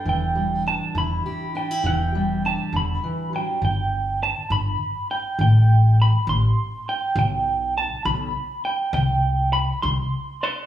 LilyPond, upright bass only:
\new Staff \with { instrumentName = "Upright bass" } { \clef bass \time 6/8 \key g \major \tempo 4. = 68 e,,4. e,,8 r4 | e,,4. e,,8 r4 | g,,4. g,,8 r4 | a,,4. a,,8 r4 |
b,,4. b,,8 r4 | c,4. c,8 r4 | }